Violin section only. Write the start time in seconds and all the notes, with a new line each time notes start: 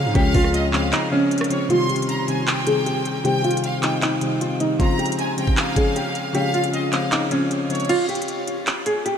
Already playing: F5
0.15 F5
0.53 D#5
0.73 F5
1.51 C#5
1.70 C6
2.08 A#5
2.28 G#5
2.47 G5
3.24 G5
3.64 F5
3.83 G5
4.80 A#5
5.19 G#5
5.38 G5
5.57 F5
6.35 F5
6.73 D#5
6.93 F5
7.70 C#5